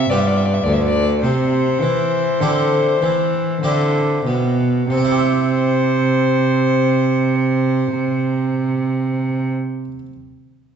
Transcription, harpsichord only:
0.11 G2 B3 F4 G4
0.66 D2
1.24 C3
1.83 E3
2.42 D3 C4 E4 G4
3.02 E3
3.63 D3 C4 E4 G4
4.27 B2
4.90 C3
4.97 C4
5.04 E4
5.12 G4
5.19 E5

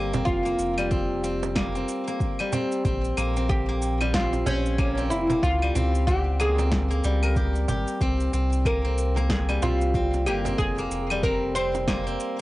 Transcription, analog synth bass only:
Already playing: G1
0.27 F1
0.59 F1
2.85 A#1
3.17 A#1
4.46 A#1
5.11 F1
5.43 C#2
5.75 C#2
7.04 C#2
7.69 G#1
8.01 C2
8.33 C2
9.62 C2
10.27 G1
10.59 F1
10.91 F1

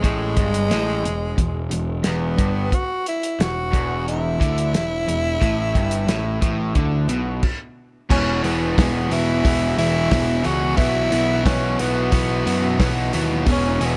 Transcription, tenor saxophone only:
0.05 G#3
2.07 B3
2.74 F#4
3.08 E4
3.42 F#4
4.09 E4
8.11 C#4
8.44 B3
8.79 B3
9.13 E4
9.78 E4
10.46 F#4
10.77 E4
11.47 C#4
11.80 B3
13.52 C#4
13.86 B3

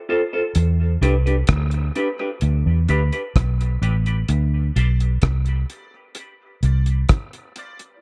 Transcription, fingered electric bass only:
0.56 E2
1.01 C2
1.49 D2
2.42 D2
2.66 E2
2.89 D2
3.36 B1
3.82 A1
4.29 D2
4.76 B1
5.23 C2
6.63 C2

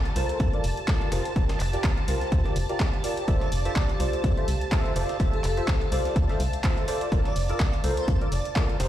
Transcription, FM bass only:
0.16 C2
0.40 F2
0.64 F1
1.12 F1
1.36 F1
1.60 F1
1.84 C2
2.08 C2
2.32 D2
2.56 F1
3.28 F1
3.52 F1
3.76 C2
4.00 C2
4.24 F2
4.48 C2
4.96 F1
5.20 F1
5.44 F1
5.68 C2
5.92 C2
6.16 D2
6.40 C2
7.12 F1
7.36 F1
7.60 C2
7.84 C2
8.08 F2
8.32 F1
8.80 F1

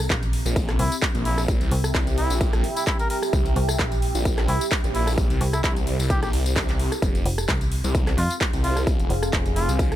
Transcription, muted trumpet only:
0.79 E4
1.25 E4
2.18 E4
2.76 E4
2.87 E4
3.00 A#4
3.10 A#4
4.49 E4
4.95 E4
5.53 E4
5.64 E4
6.10 G4
6.23 G4
8.18 F4
8.64 F4
9.56 F4

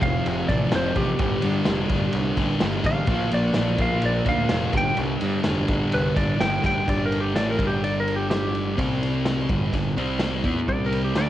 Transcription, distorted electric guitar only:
Already playing: F2 C3 F3
0.48 C3 F3
0.70 F2 C3 F3
0.94 C3 F3
1.17 G2 D3 G3
1.42 D3 G3
1.65 G2 D3 G3
2.37 D3 G3
2.60 G2 D3 G3
2.84 D3 G3
3.08 A#2 F3 A#3
3.32 F3 A#3
3.54 A#2 F3 A#3
4.25 F3 A#3
4.50 A#2 F3 A#3
4.74 G2 D3 G3
4.96 G2 D3 G3
5.22 D3 G3
5.46 G2 D3 G3
6.16 D3 G3
6.40 G2 D3 G3
6.63 D3 G3
6.88 G2 D3 G3
7.35 A2 E3 A3
7.58 G2 D3 G3
8.75 C3 G3 C4
9.50 G2 D3 G3
9.75 G2 D3
9.97 C3 G3 C4
10.45 E3 B3 E4
10.68 C3 G3 C4
11.15 D3 A3 D4

